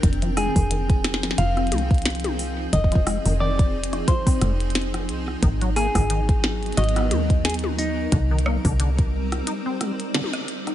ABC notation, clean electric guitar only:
X:1
M:4/4
L:1/8
Q:"Swing 16ths" 1/4=89
K:Fdor
V:1 name="Clean electric guitar"
z A3 f4 | e2 d2 c3 z | z A3 e2 A E- | E6 z2 |]